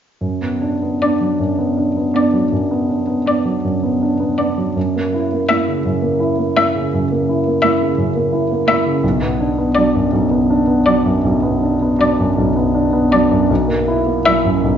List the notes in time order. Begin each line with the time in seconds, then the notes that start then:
0.21 F#2
0.41 B3
0.61 D4
0.82 B3
1.02 B3 D4 D5
1.21 F#3
1.40 F#2
1.58 B3
1.77 D4
1.97 B3
2.14 B3 D4 D5
2.33 F#3
2.52 F#2
2.71 B3
2.89 D4
3.07 B3
3.26 B3 D4 D5
3.45 F#3
3.64 F#2
3.83 B3
4.02 D4
4.20 B3
4.38 B3 D4 D5
4.58 F#3
4.76 F#2
4.96 A#3
5.14 E4
5.32 A#3
5.49 A#3 E4 E5
5.68 C#3
5.85 F#2
6.02 A#3
6.20 E4
6.39 A#3
6.56 A#3 E4 E5
6.75 C#3
6.94 F#2
7.12 A#3
7.29 E4
7.47 A#3
7.62 A#3 E4 E5
7.82 C#3
7.98 F#2
8.16 A#3
8.33 E4
8.51 A#3
8.67 A#3 E4 E5
8.86 C#3
9.04 B1
9.22 B3
9.40 D4
9.58 B3
9.75 F#3 D4 D5
9.95 F#2
10.12 B1
10.31 B3
10.50 D4
10.67 B3
10.85 F#3 D4 D5
11.06 F#2
11.25 B1
11.43 B3
11.63 D4
11.82 B3
11.99 F#3 D4 D5
12.19 F#2
12.38 B1
12.56 B3
12.74 D4
12.93 B3
13.12 F#3 D4 D5
13.31 F#2
13.50 B1
13.68 A#3
13.88 E4
14.06 A#3
14.25 F#3 E4 E5
14.45 F#2
14.64 B1